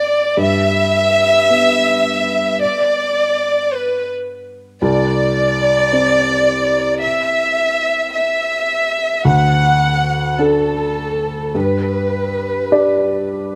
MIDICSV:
0, 0, Header, 1, 3, 480
1, 0, Start_track
1, 0, Key_signature, 1, "major"
1, 0, Tempo, 739827
1, 236, Time_signature, 6, 3, 24, 8
1, 5995, Tempo, 772201
1, 8676, End_track
2, 0, Start_track
2, 0, Title_t, "Violin section"
2, 0, Program_c, 0, 48
2, 0, Note_on_c, 0, 74, 85
2, 227, Note_off_c, 0, 74, 0
2, 251, Note_on_c, 0, 76, 106
2, 1689, Note_on_c, 0, 74, 91
2, 1693, Note_off_c, 0, 76, 0
2, 2396, Note_off_c, 0, 74, 0
2, 2417, Note_on_c, 0, 71, 73
2, 2652, Note_off_c, 0, 71, 0
2, 3129, Note_on_c, 0, 74, 101
2, 4524, Note_off_c, 0, 74, 0
2, 4552, Note_on_c, 0, 76, 92
2, 5256, Note_off_c, 0, 76, 0
2, 5275, Note_on_c, 0, 76, 87
2, 5984, Note_off_c, 0, 76, 0
2, 6007, Note_on_c, 0, 78, 84
2, 6710, Note_off_c, 0, 78, 0
2, 6711, Note_on_c, 0, 69, 76
2, 7432, Note_off_c, 0, 69, 0
2, 7448, Note_on_c, 0, 71, 66
2, 8645, Note_off_c, 0, 71, 0
2, 8676, End_track
3, 0, Start_track
3, 0, Title_t, "Felt piano"
3, 0, Program_c, 1, 0
3, 0, Control_c, 1, 64, 127
3, 0, Note_on_c, 1, 59, 59
3, 236, Note_off_c, 1, 59, 0
3, 241, Note_on_c, 1, 43, 63
3, 248, Control_c, 1, 64, 0
3, 353, Control_c, 1, 64, 127
3, 975, Note_on_c, 1, 59, 51
3, 1662, Note_off_c, 1, 43, 0
3, 1698, Control_c, 1, 64, 0
3, 1795, Control_c, 1, 64, 127
3, 3127, Note_off_c, 1, 59, 0
3, 3127, Note_on_c, 1, 36, 64
3, 3135, Control_c, 1, 64, 0
3, 3255, Control_c, 1, 64, 127
3, 3845, Note_on_c, 1, 60, 50
3, 4523, Note_off_c, 1, 36, 0
3, 4559, Control_c, 1, 64, 0
3, 4658, Control_c, 1, 64, 127
3, 5999, Note_off_c, 1, 60, 0
3, 6000, Note_on_c, 1, 38, 59
3, 6006, Control_c, 1, 64, 0
3, 6125, Control_c, 1, 64, 127
3, 6708, Note_on_c, 1, 62, 39
3, 6708, Note_on_c, 1, 69, 46
3, 7406, Note_off_c, 1, 38, 0
3, 7406, Note_off_c, 1, 62, 0
3, 7406, Note_off_c, 1, 69, 0
3, 7429, Note_on_c, 1, 43, 51
3, 7439, Control_c, 1, 64, 0
3, 7554, Control_c, 1, 64, 127
3, 8152, Note_on_c, 1, 67, 41
3, 8153, Note_on_c, 1, 62, 35
3, 8159, Note_on_c, 1, 74, 63
3, 8676, Note_off_c, 1, 43, 0
3, 8676, Note_off_c, 1, 62, 0
3, 8676, Note_off_c, 1, 67, 0
3, 8676, Note_off_c, 1, 74, 0
3, 8676, End_track
0, 0, End_of_file